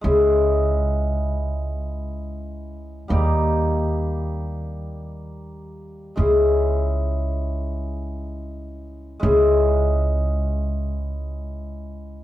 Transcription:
0.01 C#2 G#3 C#4 E4 G#4
3.08 D#2 G3 A#3 D#4 G4
6.16 C#2 G#3 C#4 E4 G#4
9.20 C#2 G#3 C#4 E4 G#4

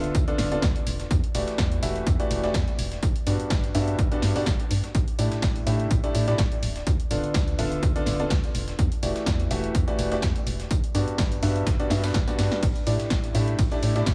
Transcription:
Already playing: D1 D3 B3 D4 F4 A4 E5
0.04 closed hi-hat
0.15 D2, kick, closed hi-hat, tambourine
0.28 D3 B3 D4 F4 A4 D5, closed hi-hat
0.38 D1, snare, open hi-hat, tambourine
0.52 D3 B3 D4 F4 A4 D5, closed hi-hat
0.62 D2, kick, snare, closed hi-hat, tambourine
0.76 closed hi-hat
0.87 E1, open hi-hat, tambourine
1.00 snare, closed hi-hat
1.11 E2, kick, closed hi-hat, tambourine
1.24 closed hi-hat
1.35 E1 E3 A3 E4 F#4 G4 D5, open hi-hat, tambourine
1.48 snare, closed hi-hat
1.58 E2, kick, snare, closed hi-hat, tambourine
1.72 closed hi-hat
1.83 E1 E3 A3 E4 F#4 G4 E5, snare, open hi-hat, tambourine
1.96 closed hi-hat
2.07 E2, kick, closed hi-hat, tambourine
2.20 E3 A3 E4 F#4 G4 D5, closed hi-hat
2.31 E1, open hi-hat, tambourine
2.44 E3 A3 E4 F#4 G4 D5, snare, closed hi-hat
2.54 E2, kick, snare, closed hi-hat, tambourine
2.68 closed hi-hat
2.79 E1, open hi-hat, tambourine
2.92 snare, closed hi-hat
3.03 G1, kick, closed hi-hat, tambourine
3.16 closed hi-hat
3.27 G2 B3 D4 F#4 G4 D5, open hi-hat, tambourine
3.40 closed hi-hat
3.50 G1, kick, snare, closed hi-hat, tambourine
3.64 closed hi-hat
3.75 G2 B3 D4 F#4 G4 E5, open hi-hat
3.88 closed hi-hat
3.99 G1, kick, closed hi-hat, tambourine
4.12 G2 B3 D4 F#4 G4 D5, closed hi-hat
4.22 G2, snare, open hi-hat, tambourine
4.36 G2 B3 D4 F#4 G4 D5, open hi-hat
4.46 G1, kick, snare, closed hi-hat, tambourine
4.60 closed hi-hat
4.71 G2, open hi-hat, tambourine
4.84 snare, closed hi-hat
4.95 A1, kick, closed hi-hat, tambourine
5.08 closed hi-hat
5.19 A2 A3 D4 E4 G4 D5, open hi-hat, tambourine
5.32 snare, closed hi-hat
5.42 A1, kick, snare, closed hi-hat, tambourine
5.56 closed hi-hat
5.67 A2 A3 D4 E4 G4 E5, snare, open hi-hat, tambourine
5.80 closed hi-hat
5.91 A1, kick, closed hi-hat, tambourine
6.04 A2 A3 D4 E4 G4 D5, closed hi-hat
6.15 A2, open hi-hat, tambourine
6.28 A2 A3 D4 E4 G4 D5, snare, closed hi-hat
6.38 A1, kick, snare, closed hi-hat, tambourine
6.52 closed hi-hat
6.63 D1, open hi-hat, tambourine
6.76 snare, closed hi-hat
6.87 D2, kick, closed hi-hat, tambourine
7.00 closed hi-hat
7.11 D1 D3 B3 D4 F4 A4 D5, open hi-hat, tambourine
7.24 closed hi-hat
7.34 D2, kick, snare, closed hi-hat, tambourine
7.48 closed hi-hat
7.59 D1 D3 B3 D4 F4 A4 E5, open hi-hat
7.72 closed hi-hat
7.83 D2, kick, closed hi-hat, tambourine
7.96 D3 B3 D4 F4 A4 D5, closed hi-hat
8.06 D1, snare, open hi-hat, tambourine
8.20 D3 B3 D4 F4 A4 D5, closed hi-hat
8.30 D2, kick, snare, closed hi-hat, tambourine
8.44 closed hi-hat
8.55 E1, open hi-hat, tambourine
8.68 snare, closed hi-hat
8.79 E2, kick, closed hi-hat, tambourine
8.92 closed hi-hat
9.03 E1 E3 A3 E4 F#4 G4 D5, open hi-hat, tambourine
9.16 snare, closed hi-hat
9.26 E2, kick, snare, closed hi-hat, tambourine
9.40 closed hi-hat
9.51 E1 E3 A3 E4 F#4 G4 E5, snare, open hi-hat, tambourine
9.64 closed hi-hat
9.75 E2, kick, closed hi-hat, tambourine
9.88 E3 A3 E4 F#4 G4 D5, closed hi-hat
9.99 E1, open hi-hat, tambourine
10.12 E3 A3 E4 F#4 G4 D5, snare, closed hi-hat
10.22 E2, kick, snare, closed hi-hat, tambourine
10.36 closed hi-hat
10.47 E1, open hi-hat, tambourine
10.60 snare, closed hi-hat
10.71 G1, kick, closed hi-hat, tambourine
10.84 closed hi-hat
10.95 G2 B3 D4 F#4 G4 D5, open hi-hat, tambourine
11.08 closed hi-hat
11.18 G1, kick, snare, closed hi-hat, tambourine
11.32 closed hi-hat
11.43 G2 B3 D4 F#4 G4 E5, open hi-hat
11.56 closed hi-hat
11.67 G1, kick, snare, closed hi-hat, tambourine
11.80 G2 B3 D4 F#4 G4 D5, closed hi-hat
11.90 G2 B3 D4 F#4 G4 E5, snare, open hi-hat, tambourine
12.04 G2 B3 D4 F#4 G4 B4, snare, open hi-hat, tambourine
12.14 G1, kick, snare, closed hi-hat
12.28 G2 B3 D4 F#4 G4 D5, snare, closed hi-hat, tambourine
12.39 G2, snare, open hi-hat, tambourine
12.52 snare, closed hi-hat
12.63 A1, kick, closed hi-hat, ride, tambourine
12.76 closed hi-hat
12.87 A2 A3 D4 E4 G4 D5, open hi-hat, tambourine
13.00 snare, closed hi-hat
13.10 A1, kick, snare, closed hi-hat, ride, tambourine
13.24 closed hi-hat
13.35 A2 A3 D4 E4 G4 E5, snare, open hi-hat, tambourine
13.48 closed hi-hat
13.59 A1, kick, closed hi-hat, ride, tambourine
13.72 A2 A3 D4 E4 G4 D5, closed hi-hat
13.83 A2, open hi-hat, tambourine
13.96 A2 A3 D4 E4 G4 D5, snare, closed hi-hat
14.06 A1, kick, snare, closed hi-hat, ride, tambourine

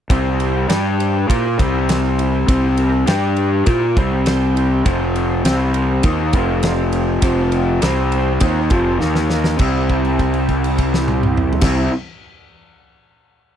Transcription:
0.09 C2 C3 G3 C4 E4 G4 C5, kick, ride
0.40 E4 G4 C5, ride
0.68 G2 G3 D4 G4 D5, snare, ride
0.98 D4 G4 C5, ride
1.28 A#2 A#3 E4 F4 G4 A#4 C5, kick, ride
1.58 C2 C3 G3 C4 E4 G4 C5, kick, ride
1.89 E4 G4 A#4, snare, ride
2.19 E4 G4 C5, ride
2.47 C2 C3 G3 C4 E4 G4, kick, ride
2.51 C5
2.77 E4 G4 A#4, ride
3.06 G2 G3 D4 G4 D5, snare, ride
3.37 D4 G4 D5, ride
3.65 A#2 A#3 E4 F4 G4 A#4 C5, kick, ride
3.97 C2 C3 G3 C4 E4 G4 C5, kick, ride
4.25 E4 G4 C5 G5, snare, ride
4.54 E4 G4 C5, ride
4.84 F1 F2 C3 F3 C4 F4 C5, kick, ride
5.15 C4 F4 C5, ride
5.43 C2 C3 G3 C4 G4 C5, snare, ride
5.71 C4 G4 A#4, ride
6.03 D#2 D#3 A#3 C4 D#4 F4 C5, kick, ride
6.33 F1 F2 C3 F3 C4 F4 C5, kick, ride
6.63 C4 F4 D5, snare, ride
6.92 C4 F4 G4, ride
7.22 F1 F2 C3 F3 C4 F4 C5, kick, ride
7.52 C4 F4 D5, ride
7.82 C2 C3 G3 C4 G4 C5, snare, ride
8.12 C4, ride
8.16 G4 C5
8.40 D#2 D#3 A#3 C4 D#4 F4 C5, kick, ride
8.70 F1 F2 C3 F3, kick, ride
8.75 C4 F4 C5
8.99 D#2 D#3 A#3 D#4 A#4, snare
9.15 snare
9.30 A#3 D#4 A#4, snare
9.44 snare
9.58 C2 C3 G3 C4 E4 G4, kick, crash
9.62 E4
9.89 kick, crash
10.05 crash
10.19 kick, crash
10.34 crash
10.49 kick, crash
10.64 crash
10.78 kick, crash
10.94 snare
11.08 high tom
11.23 mid tom
11.37 mid tom
11.53 floor tom
11.61 C2 C3 G3 C4 E4 G4, kick, snare, crash
11.65 E4

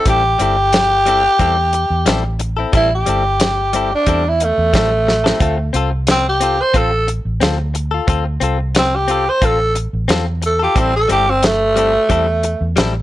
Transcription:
0.06 A1 G3 C4 E4 G4 A4, kick, closed hi-hat
0.24 muted clean electric guitar stroke
0.39 G1 G3 C4 E4 G4 A4, closed hi-hat
0.57 muted clean electric guitar stroke
0.73 muted clean electric guitar stroke, snare, closed hi-hat
1.06 G3 C4 E4 A4, closed hi-hat
1.24 muted clean electric guitar stroke
1.39 E2 G3 C4 E4 A4, kick, closed hi-hat
1.57 muted clean electric guitar stroke
1.73 muted clean electric guitar stroke, closed hi-hat
1.90 E2
2.06 A1 G3 C4 E4 A4, snare, closed hi-hat
2.24 muted clean electric guitar stroke
2.40 muted clean electric guitar stroke, closed hi-hat
2.57 C4 E4 A4
2.73 A1 G3 C4 E4 A4, kick, closed hi-hat
2.95 G4
3.06 G1 G3 C4 E4 A4, closed hi-hat
3.24 muted clean electric guitar stroke
3.40 muted clean electric guitar stroke, snare, closed hi-hat
3.73 G3 C4 E4 A4, closed hi-hat
3.91 D4, muted clean electric guitar stroke
4.06 E2 G3 C4 E4 A4, kick, closed hi-hat
4.25 E4, muted clean electric guitar stroke
4.40 A3, muted clean electric guitar stroke, closed hi-hat
4.58 E2
4.73 A1 G3 C4 E4 A4, kick, snare, closed hi-hat
4.91 muted clean electric guitar stroke
5.07 muted clean electric guitar stroke, snare
5.24 C4 E4 A4, snare
5.40 D2 C4 F4 A4, kick, closed hi-hat
5.58 muted clean electric guitar stroke
5.73 C2 C4 F4 A4, closed hi-hat
5.91 muted clean electric guitar stroke
6.07 C4, muted clean electric guitar stroke, snare, closed hi-hat
6.28 G4
6.40 C4 F4 A4, closed hi-hat
6.58 C5, muted clean electric guitar stroke
6.74 A1 C4 F4 A4, kick, closed hi-hat
6.91 muted clean electric guitar stroke
7.07 muted clean electric guitar stroke, closed hi-hat
7.25 A1
7.40 D2 C4 F4 A4, snare, closed hi-hat
7.58 muted clean electric guitar stroke
7.74 muted clean electric guitar stroke, closed hi-hat
7.91 F4 A4
8.07 D2 C4 F4 A4, kick, closed hi-hat
8.26 muted clean electric guitar stroke
8.40 C2 C4 F4 A4, closed hi-hat
8.59 muted clean electric guitar stroke
8.75 C4, muted clean electric guitar stroke, snare, closed hi-hat
8.96 G4
9.08 C4 F4 A4, closed hi-hat
9.26 C5, muted clean electric guitar stroke
9.42 A1 C4 F4 A4, kick, closed hi-hat
9.59 muted clean electric guitar stroke
9.75 muted clean electric guitar stroke, closed hi-hat
9.93 A1
10.08 E2 C4 F4 A4, snare, closed hi-hat
10.26 muted clean electric guitar stroke
10.42 muted clean electric guitar stroke, closed hi-hat
10.46 A4
10.59 F4 G4 A4
10.75 A1 G3 C4 E4 A4, kick, closed hi-hat
10.94 A4, muted clean electric guitar stroke
11.08 G1 G3 C4 E4 G4 A4, closed hi-hat
11.27 C4, muted clean electric guitar stroke
11.42 A3, muted clean electric guitar stroke, snare, closed hi-hat
11.76 G3 C4 E4 A4, closed hi-hat
11.93 muted clean electric guitar stroke
12.09 E2 G3 C4 E4 A4, kick, closed hi-hat
12.28 muted clean electric guitar stroke
12.43 muted clean electric guitar stroke, closed hi-hat
12.61 E2
12.76 A1 G3 C4 E4 A4, snare, closed hi-hat
12.95 muted clean electric guitar stroke

